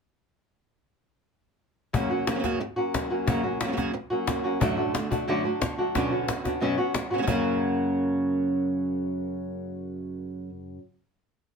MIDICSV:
0, 0, Header, 1, 5, 480
1, 0, Start_track
1, 0, Tempo, 334262
1, 2780, Time_signature, 4, 2, 24, 8
1, 9503, Tempo, 328767
1, 16710, End_track
2, 0, Start_track
2, 0, Title_t, "Nylon-string guitar"
2, 0, Program_c, 0, 24
2, 3966, Note_on_c, 0, 66, 59
2, 3976, Note_on_c, 0, 61, 51
2, 3989, Note_on_c, 0, 58, 51
2, 4001, Note_on_c, 0, 54, 44
2, 4437, Note_off_c, 0, 66, 0
2, 4450, Note_off_c, 0, 61, 0
2, 4454, Note_on_c, 0, 66, 58
2, 4456, Note_off_c, 0, 58, 0
2, 4462, Note_off_c, 0, 54, 0
2, 4467, Note_on_c, 0, 61, 55
2, 4476, Note_on_c, 0, 58, 49
2, 4487, Note_on_c, 0, 54, 48
2, 4689, Note_off_c, 0, 54, 0
2, 4689, Note_off_c, 0, 66, 0
2, 4695, Note_off_c, 0, 61, 0
2, 4700, Note_off_c, 0, 58, 0
2, 5889, Note_on_c, 0, 66, 61
2, 5906, Note_on_c, 0, 61, 53
2, 5914, Note_on_c, 0, 58, 50
2, 5925, Note_on_c, 0, 54, 46
2, 6359, Note_off_c, 0, 66, 0
2, 6372, Note_off_c, 0, 61, 0
2, 6376, Note_on_c, 0, 66, 50
2, 6382, Note_off_c, 0, 58, 0
2, 6387, Note_off_c, 0, 54, 0
2, 6389, Note_on_c, 0, 61, 56
2, 6397, Note_on_c, 0, 58, 48
2, 6410, Note_on_c, 0, 54, 45
2, 6607, Note_off_c, 0, 54, 0
2, 6612, Note_off_c, 0, 66, 0
2, 6619, Note_off_c, 0, 61, 0
2, 6623, Note_off_c, 0, 58, 0
2, 6624, Note_on_c, 0, 54, 83
2, 6844, Note_on_c, 0, 66, 57
2, 6857, Note_off_c, 0, 54, 0
2, 6857, Note_on_c, 0, 62, 53
2, 6869, Note_on_c, 0, 57, 49
2, 6879, Note_on_c, 0, 54, 46
2, 7079, Note_off_c, 0, 54, 0
2, 7083, Note_off_c, 0, 57, 0
2, 7087, Note_off_c, 0, 66, 0
2, 7088, Note_off_c, 0, 62, 0
2, 7359, Note_on_c, 0, 54, 51
2, 7572, Note_off_c, 0, 54, 0
2, 7576, Note_on_c, 0, 42, 81
2, 7583, Note_on_c, 0, 50, 90
2, 7589, Note_on_c, 0, 54, 88
2, 7597, Note_on_c, 0, 57, 84
2, 7603, Note_on_c, 0, 62, 93
2, 7606, Note_on_c, 0, 66, 98
2, 7795, Note_off_c, 0, 66, 0
2, 7811, Note_off_c, 0, 62, 0
2, 7813, Note_off_c, 0, 42, 0
2, 7816, Note_off_c, 0, 50, 0
2, 7819, Note_off_c, 0, 54, 0
2, 7823, Note_off_c, 0, 57, 0
2, 7848, Note_on_c, 0, 54, 44
2, 8044, Note_off_c, 0, 54, 0
2, 8305, Note_on_c, 0, 66, 61
2, 8313, Note_on_c, 0, 62, 57
2, 8326, Note_on_c, 0, 57, 47
2, 8336, Note_on_c, 0, 54, 49
2, 8536, Note_off_c, 0, 54, 0
2, 8536, Note_off_c, 0, 66, 0
2, 8540, Note_off_c, 0, 62, 0
2, 8546, Note_off_c, 0, 57, 0
2, 8553, Note_on_c, 0, 54, 81
2, 8560, Note_on_c, 0, 62, 87
2, 8777, Note_on_c, 0, 66, 57
2, 8779, Note_off_c, 0, 54, 0
2, 8783, Note_off_c, 0, 62, 0
2, 8798, Note_on_c, 0, 61, 52
2, 8812, Note_on_c, 0, 62, 41
2, 9010, Note_off_c, 0, 66, 0
2, 9014, Note_off_c, 0, 61, 0
2, 9014, Note_off_c, 0, 62, 0
2, 9283, Note_on_c, 0, 62, 50
2, 9485, Note_on_c, 0, 42, 73
2, 9497, Note_on_c, 0, 47, 84
2, 9502, Note_off_c, 0, 62, 0
2, 9503, Note_on_c, 0, 54, 89
2, 9509, Note_on_c, 0, 59, 89
2, 9516, Note_on_c, 0, 61, 100
2, 9524, Note_on_c, 0, 66, 95
2, 9716, Note_off_c, 0, 66, 0
2, 9725, Note_off_c, 0, 42, 0
2, 9726, Note_off_c, 0, 61, 0
2, 9731, Note_off_c, 0, 47, 0
2, 9734, Note_off_c, 0, 54, 0
2, 9737, Note_off_c, 0, 59, 0
2, 10244, Note_on_c, 0, 59, 51
2, 10467, Note_off_c, 0, 59, 0
2, 16710, End_track
3, 0, Start_track
3, 0, Title_t, "Nylon-string guitar"
3, 0, Program_c, 1, 24
3, 2780, Note_on_c, 1, 42, 69
3, 2786, Note_on_c, 1, 49, 65
3, 2792, Note_on_c, 1, 54, 70
3, 2795, Note_on_c, 1, 58, 71
3, 2802, Note_on_c, 1, 61, 81
3, 2804, Note_on_c, 1, 66, 75
3, 3004, Note_off_c, 1, 66, 0
3, 3010, Note_off_c, 1, 42, 0
3, 3013, Note_off_c, 1, 49, 0
3, 3015, Note_off_c, 1, 61, 0
3, 3016, Note_off_c, 1, 54, 0
3, 3018, Note_off_c, 1, 58, 0
3, 3021, Note_on_c, 1, 66, 45
3, 3032, Note_on_c, 1, 61, 41
3, 3039, Note_on_c, 1, 58, 38
3, 3045, Note_on_c, 1, 54, 32
3, 3246, Note_off_c, 1, 66, 0
3, 3251, Note_off_c, 1, 61, 0
3, 3260, Note_off_c, 1, 58, 0
3, 3263, Note_off_c, 1, 54, 0
3, 3263, Note_on_c, 1, 66, 47
3, 3268, Note_on_c, 1, 61, 39
3, 3277, Note_on_c, 1, 58, 38
3, 3285, Note_on_c, 1, 54, 36
3, 3302, Note_off_c, 1, 61, 0
3, 3303, Note_off_c, 1, 66, 0
3, 3304, Note_off_c, 1, 54, 0
3, 3304, Note_on_c, 1, 49, 39
3, 3306, Note_off_c, 1, 58, 0
3, 3309, Note_on_c, 1, 54, 44
3, 3315, Note_on_c, 1, 58, 44
3, 3319, Note_on_c, 1, 61, 46
3, 3320, Note_on_c, 1, 66, 42
3, 3352, Note_off_c, 1, 49, 0
3, 3360, Note_off_c, 1, 54, 0
3, 3362, Note_off_c, 1, 58, 0
3, 3368, Note_off_c, 1, 61, 0
3, 3369, Note_off_c, 1, 66, 0
3, 3369, Note_on_c, 1, 49, 50
3, 3377, Note_on_c, 1, 54, 44
3, 3379, Note_on_c, 1, 58, 50
3, 3385, Note_on_c, 1, 61, 57
3, 3386, Note_on_c, 1, 66, 51
3, 3416, Note_off_c, 1, 49, 0
3, 3424, Note_off_c, 1, 54, 0
3, 3426, Note_off_c, 1, 58, 0
3, 3429, Note_off_c, 1, 61, 0
3, 3433, Note_on_c, 1, 49, 50
3, 3434, Note_off_c, 1, 66, 0
3, 3441, Note_on_c, 1, 54, 62
3, 3443, Note_on_c, 1, 58, 57
3, 3447, Note_on_c, 1, 61, 55
3, 3452, Note_on_c, 1, 66, 68
3, 3487, Note_off_c, 1, 49, 0
3, 3488, Note_off_c, 1, 54, 0
3, 3494, Note_off_c, 1, 58, 0
3, 3496, Note_off_c, 1, 61, 0
3, 3498, Note_on_c, 1, 42, 63
3, 3500, Note_off_c, 1, 66, 0
3, 3504, Note_on_c, 1, 49, 70
3, 3505, Note_on_c, 1, 54, 74
3, 3511, Note_on_c, 1, 58, 66
3, 3513, Note_on_c, 1, 61, 67
3, 3517, Note_on_c, 1, 66, 71
3, 3721, Note_off_c, 1, 42, 0
3, 3725, Note_off_c, 1, 49, 0
3, 3726, Note_off_c, 1, 54, 0
3, 3729, Note_off_c, 1, 58, 0
3, 3731, Note_off_c, 1, 61, 0
3, 3732, Note_off_c, 1, 66, 0
3, 4222, Note_on_c, 1, 54, 41
3, 4233, Note_on_c, 1, 58, 39
3, 4241, Note_on_c, 1, 61, 47
3, 4247, Note_on_c, 1, 66, 52
3, 4688, Note_off_c, 1, 54, 0
3, 4696, Note_on_c, 1, 42, 64
3, 4699, Note_off_c, 1, 58, 0
3, 4699, Note_off_c, 1, 61, 0
3, 4704, Note_on_c, 1, 49, 78
3, 4705, Note_off_c, 1, 66, 0
3, 4705, Note_on_c, 1, 54, 76
3, 4714, Note_on_c, 1, 58, 71
3, 4716, Note_on_c, 1, 61, 76
3, 4720, Note_on_c, 1, 66, 75
3, 4911, Note_off_c, 1, 66, 0
3, 4922, Note_off_c, 1, 61, 0
3, 4928, Note_off_c, 1, 58, 0
3, 4928, Note_on_c, 1, 66, 47
3, 4930, Note_off_c, 1, 42, 0
3, 4934, Note_off_c, 1, 49, 0
3, 4935, Note_off_c, 1, 54, 0
3, 4939, Note_on_c, 1, 61, 44
3, 4945, Note_on_c, 1, 58, 38
3, 4953, Note_on_c, 1, 54, 35
3, 5152, Note_off_c, 1, 66, 0
3, 5161, Note_off_c, 1, 61, 0
3, 5166, Note_off_c, 1, 58, 0
3, 5169, Note_on_c, 1, 66, 45
3, 5172, Note_off_c, 1, 54, 0
3, 5178, Note_on_c, 1, 61, 41
3, 5183, Note_on_c, 1, 58, 39
3, 5190, Note_on_c, 1, 54, 39
3, 5212, Note_off_c, 1, 58, 0
3, 5213, Note_off_c, 1, 61, 0
3, 5214, Note_on_c, 1, 49, 42
3, 5215, Note_off_c, 1, 54, 0
3, 5215, Note_off_c, 1, 66, 0
3, 5220, Note_on_c, 1, 54, 39
3, 5226, Note_on_c, 1, 58, 42
3, 5230, Note_on_c, 1, 61, 47
3, 5232, Note_on_c, 1, 66, 45
3, 5260, Note_off_c, 1, 49, 0
3, 5268, Note_off_c, 1, 54, 0
3, 5271, Note_off_c, 1, 58, 0
3, 5277, Note_off_c, 1, 61, 0
3, 5277, Note_on_c, 1, 49, 49
3, 5280, Note_off_c, 1, 66, 0
3, 5285, Note_on_c, 1, 54, 53
3, 5288, Note_on_c, 1, 58, 52
3, 5294, Note_on_c, 1, 61, 54
3, 5297, Note_on_c, 1, 66, 55
3, 5327, Note_off_c, 1, 49, 0
3, 5335, Note_off_c, 1, 54, 0
3, 5338, Note_off_c, 1, 58, 0
3, 5341, Note_off_c, 1, 61, 0
3, 5345, Note_on_c, 1, 49, 55
3, 5346, Note_off_c, 1, 66, 0
3, 5352, Note_on_c, 1, 54, 59
3, 5355, Note_on_c, 1, 58, 56
3, 5359, Note_on_c, 1, 61, 60
3, 5363, Note_on_c, 1, 66, 66
3, 5394, Note_off_c, 1, 49, 0
3, 5400, Note_off_c, 1, 54, 0
3, 5404, Note_off_c, 1, 58, 0
3, 5404, Note_off_c, 1, 61, 0
3, 5406, Note_off_c, 1, 66, 0
3, 5410, Note_on_c, 1, 42, 63
3, 5411, Note_on_c, 1, 49, 66
3, 5417, Note_on_c, 1, 54, 64
3, 5421, Note_on_c, 1, 58, 61
3, 5421, Note_on_c, 1, 61, 71
3, 5423, Note_on_c, 1, 66, 74
3, 5632, Note_off_c, 1, 42, 0
3, 5636, Note_off_c, 1, 49, 0
3, 5638, Note_off_c, 1, 54, 0
3, 5638, Note_off_c, 1, 58, 0
3, 5641, Note_off_c, 1, 61, 0
3, 5646, Note_off_c, 1, 66, 0
3, 6125, Note_on_c, 1, 54, 47
3, 6136, Note_on_c, 1, 58, 45
3, 6144, Note_on_c, 1, 61, 43
3, 6151, Note_on_c, 1, 66, 50
3, 6607, Note_off_c, 1, 54, 0
3, 6609, Note_on_c, 1, 42, 68
3, 6613, Note_off_c, 1, 58, 0
3, 6616, Note_off_c, 1, 66, 0
3, 6616, Note_on_c, 1, 45, 71
3, 6617, Note_off_c, 1, 61, 0
3, 6621, Note_on_c, 1, 50, 69
3, 6626, Note_on_c, 1, 57, 70
3, 6626, Note_on_c, 1, 62, 72
3, 6633, Note_on_c, 1, 66, 77
3, 7080, Note_off_c, 1, 50, 0
3, 7086, Note_off_c, 1, 57, 0
3, 7090, Note_off_c, 1, 42, 0
3, 7093, Note_off_c, 1, 45, 0
3, 7094, Note_off_c, 1, 62, 0
3, 7097, Note_on_c, 1, 50, 49
3, 7102, Note_off_c, 1, 66, 0
3, 7103, Note_on_c, 1, 57, 45
3, 7111, Note_on_c, 1, 62, 47
3, 7120, Note_on_c, 1, 66, 50
3, 7319, Note_off_c, 1, 66, 0
3, 7327, Note_off_c, 1, 62, 0
3, 7333, Note_off_c, 1, 50, 0
3, 7336, Note_off_c, 1, 57, 0
3, 7336, Note_on_c, 1, 66, 40
3, 7344, Note_on_c, 1, 62, 42
3, 7351, Note_on_c, 1, 57, 39
3, 7362, Note_on_c, 1, 50, 33
3, 7570, Note_off_c, 1, 50, 0
3, 7572, Note_off_c, 1, 57, 0
3, 7572, Note_off_c, 1, 62, 0
3, 7573, Note_off_c, 1, 66, 0
3, 7825, Note_on_c, 1, 66, 43
3, 7837, Note_on_c, 1, 62, 42
3, 7842, Note_on_c, 1, 57, 42
3, 7850, Note_on_c, 1, 50, 32
3, 8529, Note_off_c, 1, 50, 0
3, 8540, Note_on_c, 1, 47, 70
3, 8541, Note_off_c, 1, 62, 0
3, 8544, Note_off_c, 1, 57, 0
3, 8546, Note_on_c, 1, 50, 69
3, 8555, Note_on_c, 1, 59, 75
3, 8559, Note_off_c, 1, 66, 0
3, 8559, Note_on_c, 1, 61, 82
3, 8565, Note_on_c, 1, 66, 80
3, 9003, Note_off_c, 1, 50, 0
3, 9012, Note_off_c, 1, 47, 0
3, 9012, Note_off_c, 1, 59, 0
3, 9020, Note_on_c, 1, 50, 46
3, 9021, Note_off_c, 1, 61, 0
3, 9024, Note_off_c, 1, 66, 0
3, 9029, Note_on_c, 1, 59, 50
3, 9037, Note_on_c, 1, 61, 48
3, 9046, Note_on_c, 1, 66, 52
3, 9241, Note_off_c, 1, 66, 0
3, 9251, Note_off_c, 1, 50, 0
3, 9251, Note_off_c, 1, 61, 0
3, 9256, Note_off_c, 1, 59, 0
3, 9258, Note_on_c, 1, 66, 39
3, 9268, Note_on_c, 1, 61, 36
3, 9281, Note_on_c, 1, 59, 39
3, 9489, Note_off_c, 1, 66, 0
3, 9493, Note_off_c, 1, 59, 0
3, 9494, Note_off_c, 1, 61, 0
3, 9737, Note_on_c, 1, 66, 47
3, 9747, Note_on_c, 1, 61, 39
3, 9757, Note_on_c, 1, 59, 38
3, 9763, Note_on_c, 1, 54, 35
3, 10243, Note_off_c, 1, 54, 0
3, 10255, Note_off_c, 1, 61, 0
3, 10255, Note_on_c, 1, 49, 43
3, 10256, Note_off_c, 1, 66, 0
3, 10260, Note_on_c, 1, 54, 45
3, 10263, Note_off_c, 1, 59, 0
3, 10269, Note_on_c, 1, 58, 50
3, 10273, Note_on_c, 1, 61, 48
3, 10274, Note_on_c, 1, 66, 48
3, 10306, Note_off_c, 1, 49, 0
3, 10307, Note_off_c, 1, 54, 0
3, 10314, Note_off_c, 1, 58, 0
3, 10318, Note_off_c, 1, 61, 0
3, 10322, Note_off_c, 1, 66, 0
3, 10323, Note_on_c, 1, 49, 52
3, 10325, Note_on_c, 1, 54, 60
3, 10332, Note_on_c, 1, 58, 58
3, 10335, Note_on_c, 1, 61, 57
3, 10339, Note_on_c, 1, 66, 63
3, 10368, Note_off_c, 1, 49, 0
3, 10376, Note_off_c, 1, 54, 0
3, 10380, Note_off_c, 1, 58, 0
3, 10386, Note_off_c, 1, 66, 0
3, 10386, Note_on_c, 1, 49, 64
3, 10387, Note_off_c, 1, 61, 0
3, 10393, Note_on_c, 1, 54, 62
3, 10398, Note_on_c, 1, 58, 64
3, 10404, Note_on_c, 1, 61, 62
3, 10404, Note_on_c, 1, 66, 72
3, 10439, Note_off_c, 1, 49, 0
3, 10444, Note_off_c, 1, 54, 0
3, 10446, Note_off_c, 1, 58, 0
3, 10450, Note_off_c, 1, 61, 0
3, 10453, Note_off_c, 1, 66, 0
3, 10454, Note_on_c, 1, 42, 66
3, 10457, Note_on_c, 1, 49, 64
3, 10462, Note_on_c, 1, 54, 70
3, 10463, Note_on_c, 1, 58, 80
3, 10467, Note_on_c, 1, 61, 69
3, 10471, Note_on_c, 1, 66, 78
3, 15149, Note_off_c, 1, 42, 0
3, 15152, Note_off_c, 1, 49, 0
3, 15157, Note_off_c, 1, 54, 0
3, 15158, Note_off_c, 1, 58, 0
3, 15162, Note_off_c, 1, 61, 0
3, 15165, Note_off_c, 1, 66, 0
3, 16710, End_track
4, 0, Start_track
4, 0, Title_t, "Cajon"
4, 2784, Note_on_c, 9, 36, 97
4, 2928, Note_off_c, 9, 36, 0
4, 3265, Note_on_c, 9, 38, 98
4, 3408, Note_off_c, 9, 38, 0
4, 3500, Note_on_c, 9, 36, 78
4, 3500, Note_on_c, 9, 38, 30
4, 3644, Note_off_c, 9, 36, 0
4, 3644, Note_off_c, 9, 38, 0
4, 4227, Note_on_c, 9, 36, 66
4, 4227, Note_on_c, 9, 38, 96
4, 4371, Note_off_c, 9, 36, 0
4, 4371, Note_off_c, 9, 38, 0
4, 4702, Note_on_c, 9, 36, 106
4, 4846, Note_off_c, 9, 36, 0
4, 5179, Note_on_c, 9, 38, 95
4, 5322, Note_off_c, 9, 38, 0
4, 5422, Note_on_c, 9, 36, 76
4, 5422, Note_on_c, 9, 38, 31
4, 5565, Note_off_c, 9, 36, 0
4, 5565, Note_off_c, 9, 38, 0
4, 6138, Note_on_c, 9, 36, 64
4, 6138, Note_on_c, 9, 38, 98
4, 6282, Note_off_c, 9, 36, 0
4, 6282, Note_off_c, 9, 38, 0
4, 6622, Note_on_c, 9, 36, 97
4, 6765, Note_off_c, 9, 36, 0
4, 7103, Note_on_c, 9, 38, 96
4, 7247, Note_off_c, 9, 38, 0
4, 7345, Note_on_c, 9, 36, 77
4, 7488, Note_off_c, 9, 36, 0
4, 8065, Note_on_c, 9, 36, 64
4, 8065, Note_on_c, 9, 38, 97
4, 8208, Note_off_c, 9, 36, 0
4, 8208, Note_off_c, 9, 38, 0
4, 8548, Note_on_c, 9, 36, 100
4, 8548, Note_on_c, 9, 38, 34
4, 8691, Note_off_c, 9, 36, 0
4, 8691, Note_off_c, 9, 38, 0
4, 9025, Note_on_c, 9, 38, 93
4, 9168, Note_off_c, 9, 38, 0
4, 9268, Note_on_c, 9, 36, 80
4, 9268, Note_on_c, 9, 38, 31
4, 9412, Note_off_c, 9, 36, 0
4, 9412, Note_off_c, 9, 38, 0
4, 9501, Note_on_c, 9, 38, 34
4, 9647, Note_off_c, 9, 38, 0
4, 9981, Note_on_c, 9, 38, 95
4, 10127, Note_off_c, 9, 38, 0
4, 10462, Note_on_c, 9, 36, 98
4, 10608, Note_off_c, 9, 36, 0
4, 16710, End_track
5, 0, Start_track
5, 0, Title_t, "Muted nylon-string guitar strokes"
5, 3738, Note_on_c, 9, 29, 61
5, 3882, Note_off_c, 9, 29, 0
5, 5649, Note_on_c, 9, 29, 62
5, 5793, Note_off_c, 9, 29, 0
5, 7094, Note_on_c, 9, 29, 68
5, 7237, Note_off_c, 9, 29, 0
5, 7582, Note_on_c, 9, 29, 60
5, 7726, Note_off_c, 9, 29, 0
5, 8058, Note_on_c, 9, 29, 71
5, 8202, Note_off_c, 9, 29, 0
5, 9022, Note_on_c, 9, 29, 70
5, 9166, Note_off_c, 9, 29, 0
5, 9501, Note_on_c, 9, 29, 60
5, 9647, Note_off_c, 9, 29, 0
5, 9983, Note_on_c, 9, 29, 63
5, 10129, Note_off_c, 9, 29, 0
5, 16710, End_track
0, 0, End_of_file